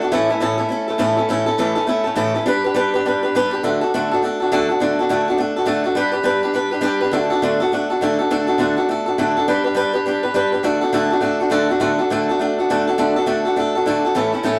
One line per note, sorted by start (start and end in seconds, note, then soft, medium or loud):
0.02 0.13 D4 medium
0.02 0.13 F#4 soft
0.02 0.12 A4 medium
0.12 0.30 A2 medium
0.12 0.30 E3 medium
0.12 0.30 A3 loud
0.12 0.30 C#4 medium
0.12 0.29 E4 medium
0.12 0.28 A4 loud
0.29 0.41 A3 soft
0.29 0.40 C#4 medium
0.29 0.41 E4 medium
0.29 0.41 A4 medium
0.40 0.59 A2 medium
0.40 0.60 E3 medium
0.40 0.59 A3 medium
0.40 0.59 C#4 medium
0.40 0.58 E4 loud
0.40 0.57 A4 medium
0.58 0.67 A3 medium
0.58 0.69 C#4 medium
0.58 0.71 E4 medium
0.58 0.70 A4 medium
0.69 0.88 A3 medium
0.69 0.89 C#4 medium
0.69 0.88 E4 medium
0.69 0.87 A4 medium
0.88 0.98 A3 soft
0.88 0.98 C#4 soft
0.88 0.98 E4 medium
0.88 0.99 A4 medium
0.98 1.17 A2 medium
0.98 1.18 E3 medium
0.98 1.18 A3 medium
0.98 1.18 C#4 medium
0.98 1.16 E4 loud
0.98 1.16 A4 medium
1.17 1.29 A3 soft
1.17 1.29 C#4 soft
1.17 1.29 E4 soft
1.17 1.28 A4 soft
1.29 1.47 A2 medium
1.29 1.47 E3 medium
1.29 1.48 A3 medium
1.29 1.47 C#4 medium
1.29 1.46 E4 medium
1.29 1.45 A4 loud
1.46 1.58 A3 medium
1.46 1.58 C#4 medium
1.46 1.58 E4 medium
1.46 1.58 A4 medium
1.58 1.76 A2 medium
1.58 1.77 E3 medium
1.58 1.77 A3 medium
1.58 1.77 C#4 medium
1.58 1.75 E4 medium
1.58 1.74 A4 medium
1.75 1.86 A3 medium
1.75 1.86 C#4 medium
1.75 1.87 E4 medium
1.75 1.87 A4 medium
1.87 2.05 A3 medium
1.87 2.06 C#4 medium
1.87 2.05 E4 medium
1.87 2.03 A4 medium
2.04 2.15 A3 medium
2.04 2.15 C#4 medium
2.04 2.16 E4 soft
2.04 2.16 A4 medium
2.15 2.34 A2 medium
2.15 2.34 E3 medium
2.15 2.35 A3 medium
2.15 2.35 C#4 medium
2.15 2.34 E4 loud
2.15 2.33 A4 loud
2.34 2.45 A3 medium
2.34 2.45 C#4 soft
2.34 2.46 E4 medium
2.34 2.45 A4 medium
2.46 2.64 G3 medium
2.46 2.64 D4 medium
2.46 2.65 G4 medium
2.46 2.63 B4 loud
2.64 2.74 D4 medium
2.64 2.75 G4 medium
2.64 2.75 B4 medium
2.74 2.93 G3 medium
2.74 2.94 D4 medium
2.74 2.94 G4 medium
2.74 2.92 B4 medium
2.94 3.05 D4 medium
2.94 3.05 G4 medium
2.94 3.04 B4 medium
3.05 3.23 G3 medium
3.05 3.23 D4 medium
3.05 3.23 G4 medium
3.05 3.22 B4 medium
3.23 3.34 D4 soft
3.23 3.34 G4 medium
3.23 3.33 B4 medium
3.35 3.52 G3 medium
3.35 3.53 D4 medium
3.35 3.52 G4 loud
3.35 3.50 B4 loud
3.51 3.63 D4 medium
3.51 3.63 G4 soft
3.51 3.62 B4 medium
3.63 3.81 D3 medium
3.63 3.81 A3 medium
3.63 3.81 D4 medium
3.63 3.82 F#4 medium
3.63 3.80 A4 medium
3.81 3.93 D4 medium
3.81 3.93 F#4 medium
3.81 3.92 A4 medium
3.94 4.11 D3 medium
3.94 4.11 A3 medium
3.94 4.11 D4 medium
3.94 4.12 F#4 medium
3.94 4.10 A4 medium
4.11 4.22 D4 medium
4.11 4.22 F#4 medium
4.11 4.22 A4 medium
4.22 4.40 A3 medium
4.22 4.40 D4 medium
4.22 4.41 F#4 medium
4.22 4.39 A4 medium
4.40 4.51 D4 soft
4.40 4.51 F#4 medium
4.40 4.50 A4 medium
4.52 4.69 D3 medium
4.52 4.69 A3 medium
4.52 4.69 D4 medium
4.52 4.69 F#4 loud
4.52 4.68 A4 loud
4.69 4.80 D4 soft
4.69 4.80 F#4 soft
4.69 4.79 A4 medium
4.80 4.98 D3 medium
4.80 4.98 A3 medium
4.80 4.99 D4 medium
4.80 4.99 F#4 medium
4.80 4.98 A4 medium
4.99 5.09 D4 medium
4.99 5.10 F#4 medium
4.99 5.09 A4 medium
5.09 5.27 D3 medium
5.09 5.27 A3 medium
5.09 5.27 D4 medium
5.09 5.28 F#4 medium
5.09 5.27 A4 medium
5.28 5.37 D4 medium
5.28 5.39 F#4 medium
5.28 5.38 A4 medium
5.38 5.56 A3 medium
5.38 5.56 D4 medium
5.38 5.57 F#4 medium
5.38 5.55 A4 medium
5.56 5.65 D4 soft
5.56 5.65 F#4 medium
5.56 5.66 A4 medium
5.65 5.84 D3 medium
5.65 5.85 A3 medium
5.65 5.85 D4 medium
5.65 5.84 F#4 medium
5.65 5.83 A4 medium
5.84 5.95 D4 soft
5.84 5.96 F#4 medium
5.84 5.95 A4 medium
5.95 6.14 G3 medium
5.95 6.13 D4 medium
5.95 6.12 G4 medium
5.95 6.11 B4 medium
6.12 6.23 D4 soft
6.12 6.24 G4 medium
6.12 6.24 B4 medium
6.23 6.43 G3 medium
6.23 6.43 D4 medium
6.23 6.43 G4 medium
6.23 6.42 B4 medium
6.43 6.53 D4 medium
6.43 6.54 G4 medium
6.43 6.54 B4 medium
6.53 6.72 G3 medium
6.53 6.73 D4 medium
6.53 6.71 G4 medium
6.53 6.70 B4 medium
6.71 6.80 D4 soft
6.71 6.82 G4 medium
6.71 6.82 B4 medium
6.81 7.01 G3 medium
6.81 7.01 D4 medium
6.81 7.01 G4 loud
6.81 6.99 B4 medium
7.01 7.12 D4 medium
7.01 7.12 G4 medium
7.01 7.12 B4 medium
7.11 7.30 D3 medium
7.11 7.31 A3 medium
7.11 7.31 D4 medium
7.11 7.30 F#4 medium
7.11 7.29 A4 medium
7.30 7.42 D4 medium
7.30 7.42 F#4 medium
7.30 7.41 A4 medium
7.42 7.60 D3 medium
7.42 7.60 A3 medium
7.42 7.61 D4 medium
7.42 7.61 F#4 medium
7.42 7.59 A4 medium
7.60 7.72 D4 medium
7.60 7.72 F#4 medium
7.60 7.71 A4 medium
7.72 7.90 A3 medium
7.72 7.91 D4 medium
7.72 7.90 F#4 medium
7.72 7.89 A4 medium
7.90 8.01 D4 soft
7.90 8.02 F#4 medium
7.90 8.01 A4 medium
8.01 8.19 D3 medium
8.01 8.20 A3 medium
8.01 8.20 D4 medium
8.01 8.19 F#4 medium
8.01 8.18 A4 loud
8.19 8.30 D4 soft
8.19 8.30 F#4 soft
8.19 8.30 A4 medium
8.30 8.48 D3 medium
8.30 8.49 A3 medium
8.30 8.48 D4 medium
8.30 8.47 F#4 medium
8.30 8.46 A4 medium
8.47 8.59 D4 soft
8.47 8.58 F#4 medium
8.47 8.59 A4 medium
8.58 8.77 D3 medium
8.58 8.77 A3 medium
8.58 8.78 D4 medium
8.58 8.77 F#4 medium
8.58 8.75 A4 medium
8.77 8.88 D4 soft
8.77 8.89 F#4 medium
8.77 8.88 A4 medium
8.89 9.07 A3 medium
8.89 9.07 D4 medium
8.89 9.06 F#4 medium
8.89 9.05 A4 medium
9.06 9.18 D4 soft
9.06 9.18 F#4 medium
9.06 9.17 A4 medium
9.18 9.36 D3 medium
9.18 9.36 A3 medium
9.18 9.37 D4 medium
9.18 9.36 F#4 medium
9.18 9.35 A4 medium
9.36 9.47 D4 soft
9.36 9.48 F#4 medium
9.36 9.47 A4 medium
9.48 9.66 G3 medium
9.48 9.66 D4 medium
9.48 9.64 G4 medium
9.48 9.63 B4 medium
9.64 9.75 D4 medium
9.64 9.75 G4 medium
9.64 9.76 B4 medium
9.74 9.94 G3 medium
9.74 9.94 D4 medium
9.74 9.94 G4 medium
9.74 9.92 B4 loud
9.93 10.05 D4 soft
9.93 10.06 G4 medium
9.93 10.05 B4 medium
10.06 10.24 G3 medium
10.06 10.24 D4 medium
10.06 10.24 G4 medium
10.06 10.22 B4 medium
10.23 10.33 D4 soft
10.23 10.34 G4 medium
10.23 10.34 B4 medium
10.34 10.53 G3 medium
10.34 10.53 D4 medium
10.34 10.53 G4 medium
10.34 10.51 B4 medium
10.52 10.63 D4 soft
10.52 10.64 G4 medium
10.52 10.64 B4 medium
10.63 10.82 D3 medium
10.63 10.82 A3 medium
10.63 10.83 D4 loud
10.63 10.81 F#4 medium
10.63 10.80 A4 medium
10.81 10.93 D4 soft
10.81 10.93 F#4 medium
10.81 10.93 A4 medium
10.93 11.11 D3 medium
10.93 11.11 A3 medium
10.93 11.12 D4 medium
10.93 11.11 F#4 loud
10.93 11.09 A4 medium
11.10 11.20 D4 medium
11.10 11.21 F#4 medium
11.10 11.22 A4 medium
11.21 11.40 A3 medium
11.21 11.40 D4 medium
11.21 11.40 F#4 medium
11.21 11.39 A4 medium
11.40 11.50 D4 soft
11.40 11.50 F#4 medium
11.40 11.51 A4 medium
11.50 11.69 D3 medium
11.50 11.70 A3 medium
11.50 11.70 D4 loud
11.50 11.70 F#4 loud
11.50 11.68 A4 loud
11.69 11.80 D4 soft
11.69 11.80 F#4 medium
11.69 11.80 A4 medium
11.80 11.99 D3 medium
11.80 11.99 A3 medium
11.80 11.99 D4 medium
11.80 11.98 F#4 loud
11.80 11.97 A4 medium
11.98 12.10 D4 soft
11.98 12.10 F#4 medium
11.98 12.10 A4 medium
12.10 12.28 D3 medium
12.10 12.29 A3 medium
12.10 12.29 D4 medium
12.10 12.29 F#4 medium
12.10 12.28 A4 loud
12.29 12.40 D4 medium
12.29 12.40 F#4 medium
12.29 12.40 A4 medium
12.39 12.58 A3 medium
12.39 12.58 D4 medium
12.39 12.59 F#4 medium
12.39 12.57 A4 medium
12.58 12.69 D4 soft
12.58 12.70 F#4 medium
12.58 12.69 A4 medium
12.70 12.87 D3 medium
12.70 12.88 A3 loud
12.70 12.88 D4 medium
12.70 12.88 F#4 medium
12.70 12.86 A4 medium
12.87 12.98 D4 soft
12.87 12.97 F#4 medium
12.87 12.98 A4 medium
12.98 13.16 D3 medium
12.98 13.16 A3 medium
12.98 13.17 D4 medium
12.98 13.16 F#4 medium
12.98 13.15 A4 medium
13.16 13.26 D4 medium
13.16 13.26 F#4 medium
13.16 13.27 A4 medium
13.26 13.45 D3 medium
13.26 13.45 A3 medium
13.26 13.45 D4 medium
13.26 13.45 F#4 medium
13.26 13.44 A4 medium
13.45 13.56 D4 medium
13.45 13.57 F#4 medium
13.45 13.56 A4 medium
13.56 13.74 A3 medium
13.56 13.75 D4 medium
13.56 13.75 F#4 medium
13.56 13.74 A4 medium
13.75 13.86 D4 soft
13.75 13.86 F#4 soft
13.75 13.86 A4 medium
13.86 14.04 D3 medium
13.86 14.04 A3 medium
13.86 14.04 D4 medium
13.86 14.05 F#4 medium
13.86 14.03 A4 medium
14.05 14.15 D4 soft
14.05 14.16 F#4 medium
14.05 14.15 A4 medium
14.15 14.33 A2 medium
14.15 14.33 E3 medium
14.15 14.33 A3 medium
14.15 14.33 C#4 medium
14.15 14.32 E4 medium
14.15 14.31 A4 medium
14.32 14.43 A3 medium
14.32 14.44 C#4 medium
14.32 14.44 E4 medium
14.32 14.43 A4 medium
14.43 14.59 A2 medium
14.43 14.59 E3 medium
14.43 14.59 A3 medium
14.43 14.59 C#4 medium
14.43 14.59 E4 medium
14.43 14.59 A4 medium